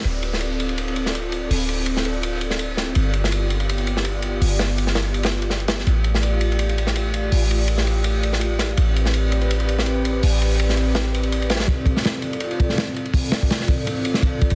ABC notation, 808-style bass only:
X:1
M:4/4
L:1/16
Q:"Swing 16ths" 1/4=165
K:Ddor
V:1 name="808-style bass" clef=bass
D,,,16 | D,,,16 | G,,,16 | G,,,16 |
A,,,16 | A,,,16 | A,,,16 | A,,,16 |
D,,,6 D,,,6- D,,, G,,, z2 | z6 D,,,2 A,,,2 G,,, z4 z |]